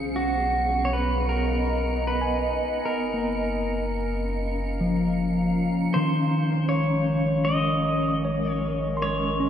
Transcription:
0, 0, Header, 1, 7, 480
1, 0, Start_track
1, 0, Tempo, 769231
1, 1781, Time_signature, 4, 2, 24, 8
1, 5925, End_track
2, 0, Start_track
2, 0, Title_t, "Synth texture"
2, 0, Program_c, 0, 99
2, 0, Note_on_c, 0, 97, 80
2, 3705, Note_off_c, 0, 97, 0
2, 5925, End_track
3, 0, Start_track
3, 0, Title_t, "Pedal steel guitar"
3, 0, Program_c, 1, 26
3, 100, Note_on_c, 1, 66, 74
3, 530, Note_on_c, 1, 73, 64
3, 549, Note_off_c, 1, 66, 0
3, 577, Note_off_c, 1, 73, 0
3, 582, Note_on_c, 1, 71, 91
3, 802, Note_off_c, 1, 71, 0
3, 805, Note_on_c, 1, 70, 87
3, 1292, Note_off_c, 1, 70, 0
3, 1294, Note_on_c, 1, 71, 90
3, 1779, Note_off_c, 1, 71, 0
3, 1781, Note_on_c, 1, 70, 84
3, 3196, Note_off_c, 1, 70, 0
3, 3706, Note_on_c, 1, 72, 92
3, 4171, Note_off_c, 1, 72, 0
3, 4173, Note_on_c, 1, 73, 89
3, 4647, Note_on_c, 1, 75, 97
3, 4671, Note_off_c, 1, 73, 0
3, 5308, Note_off_c, 1, 75, 0
3, 5308, Note_on_c, 1, 73, 97
3, 5628, Note_off_c, 1, 73, 0
3, 5631, Note_on_c, 1, 73, 89
3, 5925, Note_off_c, 1, 73, 0
3, 5925, End_track
4, 0, Start_track
4, 0, Title_t, "Ambient pad"
4, 0, Program_c, 2, 92
4, 0, Note_on_c, 2, 59, 72
4, 0, Note_on_c, 2, 61, 75
4, 0, Note_on_c, 2, 68, 77
4, 0, Note_on_c, 2, 77, 79
4, 130, Note_on_c, 2, 82, 72
4, 373, Note_on_c, 2, 75, 76
4, 619, Note_off_c, 2, 61, 0
4, 622, Note_off_c, 2, 68, 0
4, 630, Note_off_c, 2, 77, 0
4, 1777, Note_off_c, 2, 59, 0
4, 2150, Note_on_c, 2, 77, 75
4, 2243, Note_on_c, 2, 61, 60
4, 2540, Note_off_c, 2, 82, 0
4, 2543, Note_off_c, 2, 75, 0
4, 2634, Note_on_c, 2, 82, 71
4, 3696, Note_on_c, 2, 56, 81
4, 3842, Note_on_c, 2, 70, 66
4, 4606, Note_off_c, 2, 82, 0
4, 5240, Note_off_c, 2, 77, 0
4, 5925, Note_off_c, 2, 56, 0
4, 5925, Note_off_c, 2, 61, 0
4, 5925, Note_off_c, 2, 70, 0
4, 5925, End_track
5, 0, Start_track
5, 0, Title_t, "Tine electric piano"
5, 0, Program_c, 3, 4
5, 0, Control_c, 3, 64, 127
5, 1382, Note_on_c, 3, 80, 65
5, 1788, Control_c, 3, 64, 0
5, 1886, Control_c, 3, 64, 127
5, 1959, Note_on_c, 3, 58, 44
5, 2473, Note_off_c, 3, 80, 0
5, 2999, Note_on_c, 3, 53, 57
5, 3049, Note_off_c, 3, 58, 0
5, 3710, Control_c, 3, 64, 0
5, 3717, Note_on_c, 3, 51, 66
5, 3812, Note_off_c, 3, 53, 0
5, 3833, Control_c, 3, 64, 127
5, 4803, Note_off_c, 3, 51, 0
5, 5146, Note_on_c, 3, 73, 56
5, 5597, Note_on_c, 3, 84, 58
5, 5866, Note_on_c, 3, 61, 55
5, 5925, Note_off_c, 3, 61, 0
5, 5925, Note_off_c, 3, 73, 0
5, 5925, Note_off_c, 3, 84, 0
5, 5925, End_track
6, 0, Start_track
6, 0, Title_t, "Synth drone"
6, 0, Program_c, 4, 95
6, 3695, Note_on_c, 4, 56, 80
6, 5925, Note_off_c, 4, 56, 0
6, 5925, End_track
7, 0, Start_track
7, 0, Title_t, "Sub bass"
7, 0, Program_c, 5, 38
7, 0, Note_on_c, 5, 35, 76
7, 1756, Note_off_c, 5, 35, 0
7, 1782, Note_on_c, 5, 30, 79
7, 3677, Note_off_c, 5, 30, 0
7, 3702, Note_on_c, 5, 32, 89
7, 5925, Note_off_c, 5, 32, 0
7, 5925, End_track
0, 0, End_of_file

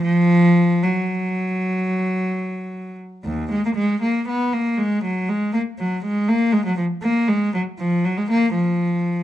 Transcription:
0, 0, Header, 1, 2, 480
1, 0, Start_track
1, 0, Tempo, 531915
1, 35, Time_signature, 12, 3, 24, 8
1, 3395, Tempo, 501672
1, 8628, End_track
2, 0, Start_track
2, 0, Title_t, "Cello"
2, 0, Program_c, 0, 42
2, 22, Note_on_c, 0, 53, 86
2, 732, Note_off_c, 0, 53, 0
2, 750, Note_on_c, 0, 54, 62
2, 2666, Note_off_c, 0, 54, 0
2, 2927, Note_on_c, 0, 39, 56
2, 3159, Note_off_c, 0, 39, 0
2, 3170, Note_on_c, 0, 56, 58
2, 3281, Note_off_c, 0, 56, 0
2, 3301, Note_on_c, 0, 58, 49
2, 3343, Note_off_c, 0, 58, 0
2, 3390, Note_on_c, 0, 56, 60
2, 3632, Note_off_c, 0, 56, 0
2, 3643, Note_on_c, 0, 58, 49
2, 3880, Note_off_c, 0, 58, 0
2, 3894, Note_on_c, 0, 59, 52
2, 4127, Note_off_c, 0, 59, 0
2, 4132, Note_on_c, 0, 58, 50
2, 4369, Note_on_c, 0, 56, 57
2, 4371, Note_off_c, 0, 58, 0
2, 4611, Note_off_c, 0, 56, 0
2, 4621, Note_on_c, 0, 54, 49
2, 4854, Note_off_c, 0, 54, 0
2, 4859, Note_on_c, 0, 56, 57
2, 5090, Note_on_c, 0, 58, 50
2, 5098, Note_off_c, 0, 56, 0
2, 5167, Note_off_c, 0, 58, 0
2, 5336, Note_on_c, 0, 54, 50
2, 5568, Note_off_c, 0, 54, 0
2, 5582, Note_on_c, 0, 56, 57
2, 5808, Note_on_c, 0, 58, 62
2, 5809, Note_off_c, 0, 56, 0
2, 6039, Note_on_c, 0, 56, 63
2, 6045, Note_off_c, 0, 58, 0
2, 6161, Note_off_c, 0, 56, 0
2, 6165, Note_on_c, 0, 54, 54
2, 6274, Note_on_c, 0, 53, 52
2, 6281, Note_off_c, 0, 54, 0
2, 6350, Note_off_c, 0, 53, 0
2, 6515, Note_on_c, 0, 58, 57
2, 6754, Note_off_c, 0, 58, 0
2, 6764, Note_on_c, 0, 56, 59
2, 7003, Note_off_c, 0, 56, 0
2, 7010, Note_on_c, 0, 54, 51
2, 7086, Note_off_c, 0, 54, 0
2, 7245, Note_on_c, 0, 53, 56
2, 7479, Note_off_c, 0, 53, 0
2, 7496, Note_on_c, 0, 54, 51
2, 7609, Note_off_c, 0, 54, 0
2, 7617, Note_on_c, 0, 56, 56
2, 7729, Note_off_c, 0, 56, 0
2, 7744, Note_on_c, 0, 58, 62
2, 7966, Note_off_c, 0, 58, 0
2, 7970, Note_on_c, 0, 53, 54
2, 8628, Note_off_c, 0, 53, 0
2, 8628, End_track
0, 0, End_of_file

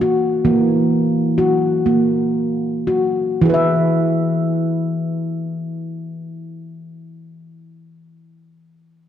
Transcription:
0, 0, Header, 1, 2, 480
1, 0, Start_track
1, 0, Tempo, 913242
1, 238, Time_signature, 3, 2, 24, 8
1, 724, Tempo, 981997
1, 1204, Tempo, 1058201
1, 1684, Tempo, 1100917
1, 4156, End_track
2, 0, Start_track
2, 0, Title_t, "Handpan"
2, 0, Program_c, 0, 114
2, 0, Note_on_c, 0, 52, 65
2, 7, Note_on_c, 0, 66, 59
2, 219, Note_off_c, 0, 52, 0
2, 235, Note_on_c, 0, 58, 60
2, 236, Note_on_c, 0, 52, 58
2, 239, Note_off_c, 0, 66, 0
2, 723, Note_off_c, 0, 58, 0
2, 725, Note_on_c, 0, 66, 63
2, 960, Note_off_c, 0, 66, 0
2, 960, Note_on_c, 0, 58, 54
2, 1437, Note_on_c, 0, 66, 58
2, 1439, Note_off_c, 0, 58, 0
2, 1665, Note_off_c, 0, 52, 0
2, 1683, Note_off_c, 0, 66, 0
2, 1683, Note_on_c, 0, 52, 73
2, 1683, Note_on_c, 0, 64, 47
2, 1700, Note_on_c, 0, 68, 48
2, 1718, Note_on_c, 0, 71, 47
2, 1736, Note_on_c, 0, 76, 47
2, 3528, Note_off_c, 0, 52, 0
2, 3528, Note_off_c, 0, 64, 0
2, 3546, Note_off_c, 0, 68, 0
2, 3563, Note_off_c, 0, 71, 0
2, 3582, Note_off_c, 0, 76, 0
2, 4156, End_track
0, 0, End_of_file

